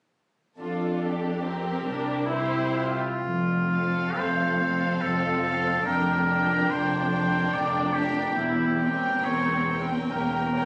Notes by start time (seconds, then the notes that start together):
0.59 F2 D4 F4 A4
1.03 G4
1.44 C4 A#4
1.86 C2 D4
2.29 E4 G4 C5
2.74 F4
3.22 F1 F2
3.71 C4 A4 F5
4.17 F1 F2 A3 C5
4.60 C4 A4 F5
5.01 F1 F2 A4
5.42 C4 A4 F5
5.85 F1 F2 D4 A#4 G5
6.28 D4 A#4 G5
6.70 F1 F2 C5
7.12 D4 A#4 G5
7.53 F1 F2 D5
7.94 D4 G4 A#4 G5
8.35 E1 E2 E4
8.80 C4 C#4 A#4 G5
9.24 E1 E2 C#5
9.69 C#4 A#4 G5
10.11 E1 E2 A#3 A#4
10.54 C#4 A#4 G5